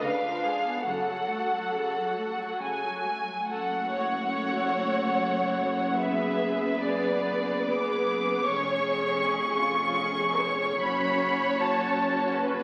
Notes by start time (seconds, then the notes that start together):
0.00 C#2 C#3 D4 B4 F5
0.25 F3
0.44 G#3 G#4
0.66 B3
0.85 F#1 F#2 C#3 F#4 A4 F#5
1.09 F#3
1.30 A3
1.52 F#3
1.74 C#3
1.95 F#3
2.17 A3
2.39 F#3
2.60 C#3 G#5
2.82 F#3
3.06 A3
3.25 F#3
3.46 F#1 F#2 A3 F#4 A4 F#5
3.91 C#5
5.97 B3 G#4 B4 E5
6.77 B3 G#4 D5
7.65 B3 G#4 D6
8.45 F1 F2 C#4 G#4 C#5 C#6
9.23 G#4
9.59 F4
10.00 G#4
10.41 C#5
10.79 F#1 F#2 C#4 F#4 B5
11.58 C#4 F#4 A5
12.37 B4